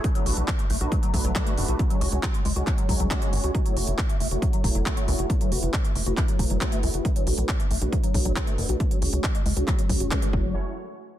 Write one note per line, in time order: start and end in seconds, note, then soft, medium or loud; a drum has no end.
0.04 0.09 F#3 medium
0.04 kick loud
0.04 closed hi-hat medium
0.15 0.26 F#3 medium
0.15 0.23 A3 medium
0.15 0.23 D4 medium
0.15 0.23 F#4 medium
0.15 0.23 B4 medium
0.15 closed hi-hat medium
0.26 0.33 B1 medium
0.26 0.41 A3 loud
0.26 0.41 D4 medium
0.26 0.33 F#4 medium
0.26 0.41 F#4 loud
0.26 0.41 B4 medium
0.26 open hi-hat loud
0.37 0.44 B1 medium
0.37 closed hi-hat medium
0.48 0.52 F#3 medium
0.48 kick loud
0.48 clap loud
0.48 closed hi-hat medium
0.59 0.66 A3 medium
0.59 closed hi-hat medium
0.70 0.77 B1 medium
0.70 0.77 A3 medium
0.70 open hi-hat loud
0.81 0.88 B1 medium
0.81 0.96 A3 medium
0.81 0.96 D4 medium
0.81 0.96 F#4 medium
0.81 0.88 F#4 medium
0.81 0.96 B4 medium
0.81 closed hi-hat medium
0.92 0.96 F#3 medium
0.92 kick loud
0.92 closed hi-hat medium
1.03 1.13 F#3 medium
1.03 closed hi-hat medium
1.14 1.20 B1 medium
1.14 1.21 F#3 medium
1.14 1.29 A3 medium
1.14 1.29 D4 medium
1.14 1.29 F#4 medium
1.14 1.29 B4 medium
1.14 kick medium
1.14 open hi-hat loud
1.25 1.31 B1 medium
1.25 1.32 F#3 loud
1.25 closed hi-hat medium
1.35 1.40 F#3 medium
1.35 1.43 A3 medium
1.35 1.43 D4 medium
1.35 1.43 F#4 medium
1.35 1.43 B4 medium
1.35 kick loud
1.35 clap loud
1.35 closed hi-hat medium
1.47 1.54 A3 medium
1.47 1.54 D4 medium
1.47 1.54 F#4 medium
1.47 1.54 B4 medium
1.47 closed hi-hat medium
1.57 1.64 F#1 loud
1.57 1.65 F#2 medium
1.57 1.65 A3 medium
1.57 1.65 D4 medium
1.57 1.65 F#4 medium
1.57 1.65 B4 medium
1.57 open hi-hat loud
1.68 1.75 B1 medium
1.68 1.76 A3 medium
1.68 1.76 D4 medium
1.68 1.76 F#4 medium
1.68 1.76 B4 medium
1.68 closed hi-hat medium
1.79 1.84 F#3 medium
1.79 kick loud
1.79 closed hi-hat medium
1.90 2.01 F#3 medium
1.90 1.98 G#3 medium
1.90 1.98 C#4 medium
1.90 1.98 F#4 medium
1.90 1.98 C#5 medium
1.90 closed hi-hat medium
2.01 2.08 C#2 medium
2.01 2.17 G#3 medium
2.01 2.17 C#4 medium
2.01 2.09 F#4 medium
2.01 2.17 F#4 medium
2.01 2.17 C#5 loud
2.01 open hi-hat loud
2.12 2.19 C#2 medium
2.12 closed hi-hat medium
2.23 2.28 F#3 medium
2.23 kick loud
2.23 clap loud
2.23 closed hi-hat medium
2.34 2.41 G#3 medium
2.34 closed hi-hat medium
2.45 2.52 C#2 medium
2.45 2.52 G#3 medium
2.45 open hi-hat loud
2.56 2.63 C#2 medium
2.56 2.71 G#3 loud
2.56 2.71 C#4 medium
2.56 2.71 F#4 medium
2.56 2.63 F#4 medium
2.56 2.71 C#5 medium
2.56 closed hi-hat medium
2.67 2.71 F#3 medium
2.67 kick loud
2.67 clap medium
2.67 closed hi-hat medium
2.78 2.88 F#3 medium
2.78 closed hi-hat medium
2.89 2.96 C#2 loud
2.89 2.96 F#3 medium
2.89 3.04 G#3 medium
2.89 3.04 C#4 medium
2.89 3.04 F#4 medium
2.89 3.04 C#5 medium
2.89 kick medium
2.89 open hi-hat loud
3.00 3.07 C#2 medium
3.00 3.07 F#3 loud
3.00 closed hi-hat medium
3.10 3.15 F#3 medium
3.10 3.18 G#3 medium
3.10 3.18 C#4 medium
3.10 3.18 F#4 medium
3.10 3.18 C#5 medium
3.10 kick loud
3.10 clap loud
3.10 closed hi-hat medium
3.21 3.29 G#3 medium
3.21 3.29 C#4 medium
3.21 3.29 F#4 medium
3.21 3.29 C#5 medium
3.21 closed hi-hat medium
3.32 3.39 G#1 medium
3.32 3.40 F#2 medium
3.32 3.40 G#3 medium
3.32 3.40 C#4 medium
3.32 3.40 F#4 medium
3.32 3.40 C#5 medium
3.32 open hi-hat medium
3.44 3.50 C#2 medium
3.44 3.51 G#3 medium
3.44 3.51 C#4 medium
3.44 3.51 F#4 medium
3.44 3.51 C#5 medium
3.44 closed hi-hat medium
3.55 3.59 F#3 medium
3.55 kick loud
3.55 closed hi-hat medium
3.65 3.76 F#3 medium
3.65 3.73 A3 medium
3.65 3.73 E4 medium
3.65 3.73 F#4 medium
3.65 3.73 C#5 medium
3.65 closed hi-hat medium
3.77 3.83 F#1 medium
3.77 3.92 A3 medium
3.77 3.92 E4 loud
3.77 3.92 F#4 medium
3.77 3.84 F#4 medium
3.77 3.92 C#5 loud
3.77 open hi-hat loud
3.88 3.94 F#1 medium
3.88 closed hi-hat medium
3.98 4.03 F#3 medium
3.98 kick loud
3.98 clap loud
3.98 closed hi-hat medium
4.09 4.17 A3 medium
4.09 closed hi-hat medium
4.20 4.27 F#1 medium
4.20 4.28 A3 medium
4.20 open hi-hat loud
4.31 4.38 F#1 medium
4.31 4.46 A3 medium
4.31 4.46 E4 medium
4.31 4.46 F#4 medium
4.31 4.39 F#4 medium
4.31 4.46 C#5 medium
4.31 closed hi-hat medium
4.42 4.47 F#3 medium
4.42 kick loud
4.42 closed hi-hat medium
4.53 4.64 F#3 medium
4.53 closed hi-hat medium
4.64 4.71 F#1 medium
4.64 4.71 F#3 medium
4.64 4.79 A3 medium
4.64 4.79 E4 medium
4.64 4.79 F#4 medium
4.64 4.79 C#5 loud
4.64 kick medium
4.64 open hi-hat loud
4.75 4.82 F#1 medium
4.75 4.82 F#3 loud
4.75 closed hi-hat medium
4.86 4.90 F#3 medium
4.86 4.93 A3 medium
4.86 4.93 E4 medium
4.86 4.93 F#4 medium
4.86 4.93 C#5 medium
4.86 kick loud
4.86 clap loud
4.86 closed hi-hat medium
4.96 5.04 A3 loud
4.96 5.04 A3 medium
4.96 5.04 E4 medium
4.96 5.04 F#4 medium
4.96 5.04 C#5 medium
4.96 closed hi-hat medium
5.07 5.15 C#2 medium
5.07 5.15 F#2 medium
5.07 5.15 A3 medium
5.07 5.15 E4 medium
5.07 5.15 F#4 medium
5.07 5.15 C#5 medium
5.07 open hi-hat medium
5.18 5.26 F#1 medium
5.18 5.26 A3 medium
5.18 5.26 E4 medium
5.18 5.26 F#4 medium
5.18 5.26 C#5 medium
5.18 closed hi-hat medium
5.30 5.34 F#3 medium
5.30 kick loud
5.30 closed hi-hat medium
5.40 5.51 F#3 medium
5.40 5.48 A3 medium
5.40 5.48 E4 medium
5.40 5.48 F#4 medium
5.40 5.48 B4 medium
5.40 closed hi-hat medium
5.51 5.59 F#1 medium
5.51 5.67 A3 medium
5.51 5.67 E4 medium
5.51 5.67 F#4 medium
5.51 5.59 F#4 medium
5.51 5.67 B4 medium
5.51 open hi-hat loud
5.63 5.69 F#1 medium
5.63 closed hi-hat medium
5.74 5.78 F#3 medium
5.74 kick loud
5.74 clap loud
5.74 closed hi-hat medium
5.85 5.92 A3 medium
5.85 closed hi-hat medium
5.95 6.02 F#1 medium
5.95 6.03 A3 medium
5.95 open hi-hat medium
6.06 6.13 F#1 medium
6.06 6.21 A3 medium
6.06 6.21 E4 medium
6.06 6.21 F#4 medium
6.06 6.14 F#4 medium
6.06 6.21 B4 medium
6.06 closed hi-hat medium
6.17 6.22 F#3 medium
6.17 kick loud
6.17 clap medium
6.17 closed hi-hat medium
6.28 6.39 F#3 medium
6.28 closed hi-hat medium
6.39 6.46 F#1 loud
6.39 6.47 F#3 medium
6.39 6.54 A3 medium
6.39 6.54 E4 medium
6.39 6.54 F#4 medium
6.39 6.54 B4 medium
6.39 kick medium
6.39 open hi-hat loud
6.50 6.57 F#1 medium
6.50 6.57 F#3 loud
6.50 closed hi-hat medium
6.61 6.66 F#3 medium
6.61 6.69 A3 medium
6.61 6.69 E4 medium
6.61 6.69 F#4 medium
6.61 6.69 B4 medium
6.61 kick loud
6.61 clap loud
6.61 closed hi-hat medium
6.72 6.80 A3 medium
6.72 6.79 A3 medium
6.72 6.80 E4 medium
6.72 6.80 F#4 medium
6.72 6.80 B4 medium
6.72 closed hi-hat medium
6.83 6.90 C#2 loud
6.83 6.90 F#2 medium
6.83 6.91 A3 medium
6.83 6.91 E4 medium
6.83 6.91 F#4 loud
6.83 6.91 B4 medium
6.83 open hi-hat medium
6.94 7.01 F#1 medium
6.94 7.02 A3 medium
6.94 7.02 E4 medium
6.94 7.02 F#4 medium
6.94 7.01 F#4 medium
6.94 7.02 B4 medium
6.94 closed hi-hat medium
7.05 7.09 F#3 medium
7.05 kick loud
7.05 closed hi-hat medium
7.16 7.26 F#3 medium
7.16 7.24 A3 medium
7.16 7.24 D4 medium
7.16 7.24 F#4 medium
7.16 7.23 B4 medium
7.16 closed hi-hat medium
7.27 7.34 B1 medium
7.27 7.42 A3 medium
7.27 7.42 D4 loud
7.27 7.34 F#4 medium
7.27 7.42 F#4 loud
7.27 7.42 B4 loud
7.27 open hi-hat loud
7.38 7.45 B1 medium
7.38 closed hi-hat medium
7.49 7.53 F#3 medium
7.49 kick loud
7.49 clap loud
7.49 closed hi-hat medium
7.60 7.67 A3 medium
7.60 closed hi-hat medium
7.71 7.77 B1 medium
7.71 7.78 A3 medium
7.71 open hi-hat medium
7.81 7.88 B1 medium
7.81 7.97 A3 medium
7.81 7.97 D4 medium
7.81 7.97 F#4 medium
7.81 7.89 F#4 medium
7.81 7.97 B4 loud
7.81 closed hi-hat medium
7.92 7.97 F#3 medium
7.92 kick loud
7.92 closed hi-hat medium
8.03 8.14 F#3 medium
8.03 closed hi-hat medium
8.14 8.21 B1 loud
8.14 8.22 F#3 medium
8.14 8.30 A3 medium
8.14 8.30 D4 medium
8.14 8.30 F#4 medium
8.14 8.30 B4 medium
8.14 kick medium
8.14 open hi-hat loud
8.25 8.32 B1 medium
8.25 8.33 F#3 loud
8.25 closed hi-hat medium
8.36 8.41 F#3 medium
8.36 8.44 A3 medium
8.36 8.44 D4 medium
8.36 8.44 F#4 medium
8.36 8.44 B4 medium
8.36 kick loud
8.36 clap loud
8.36 closed hi-hat medium
8.47 8.55 A3 medium
8.47 8.55 D4 medium
8.47 8.55 F#4 medium
8.47 8.55 B4 medium
8.47 closed hi-hat medium
8.58 8.65 F#1 medium
8.58 8.65 F#2 medium
8.58 8.66 A3 medium
8.58 8.66 D4 medium
8.58 8.66 F#4 medium
8.58 8.66 B4 loud
8.58 open hi-hat medium
8.69 8.76 B1 medium
8.69 8.77 A3 medium
8.69 8.77 D4 medium
8.69 8.76 F#4 medium
8.69 8.77 F#4 medium
8.69 8.77 B4 medium
8.69 closed hi-hat medium
8.80 8.84 F#3 medium
8.80 kick loud
8.80 closed hi-hat medium
8.91 9.01 F#3 medium
8.91 8.99 G#3 medium
8.91 8.99 C#4 medium
8.91 8.99 F#4 medium
8.91 8.99 C#5 medium
8.91 closed hi-hat medium
9.02 9.09 C#2 medium
9.02 9.18 G#3 loud
9.02 9.17 C#4 loud
9.02 9.09 F#4 medium
9.02 9.18 F#4 loud
9.02 9.17 C#5 medium
9.02 open hi-hat loud
9.13 9.20 C#2 medium
9.13 closed hi-hat medium
9.24 9.28 F#3 medium
9.24 kick loud
9.24 clap loud
9.24 closed hi-hat medium
9.35 9.42 G#3 medium
9.35 closed hi-hat medium
9.46 9.53 C#2 medium
9.46 9.53 G#3 medium
9.46 open hi-hat medium
9.57 9.63 C#2 medium
9.57 9.72 G#3 medium
9.57 9.72 C#4 medium
9.57 9.64 F#4 medium
9.57 9.72 F#4 loud
9.57 9.72 C#5 medium
9.57 closed hi-hat medium
9.68 9.72 F#3 medium
9.68 kick loud
9.68 clap medium
9.68 closed hi-hat medium
9.78 9.89 F#3 medium
9.78 closed hi-hat medium
9.89 9.96 C#2 loud
9.89 9.97 F#3 medium
9.89 10.05 G#3 medium
9.89 10.05 C#4 medium
9.89 10.05 F#4 medium
9.89 10.05 C#5 medium
9.89 kick medium
9.89 open hi-hat loud
10.00 10.07 G#1 medium
10.00 10.08 F#4 medium
10.00 closed hi-hat medium
10.11 10.16 E3 medium
10.11 10.19 G#3 medium
10.11 10.19 C#4 medium
10.11 10.19 F#4 medium
10.11 10.19 C#5 medium
10.11 kick loud
10.11 clap loud
10.11 closed hi-hat medium
10.22 10.27 E3 loud
10.22 10.30 G#3 medium
10.22 10.30 C#4 medium
10.22 10.30 F#4 loud
10.22 10.30 C#5 medium
10.22 closed hi-hat medium
10.33 10.54 F#1 loud
10.33 10.54 F#3 medium
10.33 10.54 A3 medium
10.33 10.54 E4 medium
10.33 10.54 F#4 medium
10.33 10.54 C#5 medium
10.33 kick loud